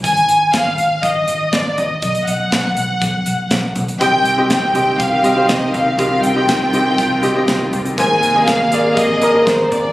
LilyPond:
<<
  \new Staff \with { instrumentName = "Violin section" } { \time 4/4 \key c \minor \tempo 4 = 121 aes''4 f''4 ees''4 d''8 ees''8 | ees''8 fis''2. r8 | g''4 g''4 f''4 ees''8 f''8 | f''8 g''2. r8 |
aes''4 f''4 ees''4 c''8 d''8 | }
  \new Staff \with { instrumentName = "Upright piano" } { \time 4/4 \key c \minor r1 | r1 | <c' g' ees''>8. <c' g' ees''>8. <c' g' ees''>8. r16 <c' g' ees''>16 <c' g' c''>4 r16 | <c' g' ees''>8. <c' g' ees''>8. <c' g' ees''>8. r16 <c' g' ees''>16 <c' g' ees''>4 r16 |
<bes aes' c''>8. <bes aes' ees''>8. <bes aes' d''>8. r16 <bes aes' bes'>16 <bes aes' bes'>4 r16 | }
  \new Staff \with { instrumentName = "Upright piano" } { \clef bass \time 4/4 \key c \minor r1 | r1 | c4. r2 r8 | c4. r2 r8 |
aes,4. r2 r8 | }
  \new Staff \with { instrumentName = "String section" } { \time 4/4 \key c \minor << { r1 | r1 | g'1 | f'1 |
aes'1 | } \\ { r1 | r1 | <ees c'>1~ | <ees c'>1 |
<c bes>1 | } >> }
  \new Staff \with { instrumentName = "Fingered electric bass" } { \clef bass \time 4/4 \key c \minor aes,,8 aes,,8 aes,,8 aes,,8 aes,,8 aes,,8 aes,,8 aes,,8 | b,,8 b,,8 b,,8 b,,8 b,,8 b,,8 b,,8 b,,8 | c,8 c,8 c,8 c,8 c,8 c,8 c,8 c,8 | c,8 c,8 c,8 c,8 c,8 c,8 c,8 c,8 |
aes,,8 aes,,8 aes,,8 aes,,8 aes,,8 aes,,8 aes,,8 aes,,8 | }
  \new DrumStaff \with { instrumentName = "Drums" } \drummode { \time 4/4 <hh bd>16 hh16 hh8 <hh bd sn>8 hh8 <hh bd>8 hh8 <hh bd sn>8 <hh tomfh>8 | <hh bd>16 hh16 hh8 <hh bd sn>8 hh8 <hh bd>8 hh8 <hh bd sn>8 <hh tomfh>16 hh16 | <hh bd>8 hh8 <hh bd sn>8 <hh tomfh>8 <hh bd>8 hh8 <hh bd sn>8 <hh tomfh>8 | <hh bd>8 hh8 <hh bd sn>8 hh8 <hh bd>8 hh8 <hh bd sn>8 <hh tomfh>16 hh16 |
<hh bd>8 hh8 <hh bd sn>8 hh8 <hh bd>8 hh8 <hh bd sn>8 <hh tomfh>8 | }
>>